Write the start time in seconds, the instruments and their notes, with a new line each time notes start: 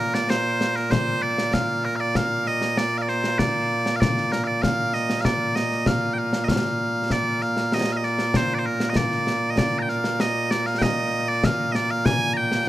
Already playing: bagpipes A#2 A#3 A#4
0.14 bagpipes D5, snare
0.30 bagpipes C5, snare
0.61 snare
0.76 bagpipes A#4, snare
0.91 bagpipes C5, concert bass drum, snare
1.22 bagpipes D5
1.38 snare
1.54 bagpipes F5, concert bass drum, snare
1.85 bagpipes A#4
1.96 bagpipes F5
2.00 bagpipes D5
2.15 bagpipes F5, concert bass drum, snare
2.46 bagpipes D#5, snare
2.62 snare
2.77 bagpipes D5, snare
2.98 bagpipes F5
3.02 bagpipes D5
3.08 bagpipes C5, snare
3.24 snare
3.39 bagpipes D5, concert bass drum, snare
3.86 snare
3.96 bagpipes F5
4.00 bagpipes D5, concert bass drum, snare
4.17 snare
4.32 bagpipes A#4, snare
4.44 bagpipes D5 F5
4.62 bagpipes F5, concert bass drum, snare
4.94 bagpipes D#5, snare
5.10 snare
5.21 bagpipes F5
5.25 bagpipes D5, concert bass drum, snare
5.56 bagpipes D#5, snare
5.71 snare
5.86 bagpipes F5, concert bass drum, snare
6.14 bagpipes G5
6.18 bagpipes F5
6.33 snare
6.44 bagpipes D#5
6.48 bagpipes F5, concert bass drum, snare
7.10 bagpipes D5, concert bass drum, snare
7.41 bagpipes F5, snare
7.57 snare
7.72 bagpipes D#5, snare
7.92 bagpipes F5
7.97 bagpipes D#5
8.03 bagpipes D5, snare
8.19 snare
8.34 bagpipes C5, concert bass drum, snare
8.54 bagpipes D5
8.59 bagpipes C5
8.66 bagpipes A#4
8.80 snare
8.90 bagpipes D#5
8.96 bagpipes D5, concert bass drum, snare
9.11 snare
9.27 snare
9.51 bagpipes D#5
9.58 bagpipes D5, concert bass drum, snare
9.79 bagpipes G5 A#5
9.89 bagpipes F5, snare
10.04 snare
10.20 bagpipes D#5, snare
10.51 bagpipes D5, snare
10.66 bagpipes F5, snare
10.79 bagpipes D#5 G5, concert bass drum, snare
11.29 bagpipes D5
11.44 bagpipes F5, concert bass drum, snare
11.72 bagpipes D5 D#5, snare
11.91 bagpipes F5
12.06 bagpipes G#5, concert bass drum, snare
12.33 bagpipes G5 A#5
12.52 snare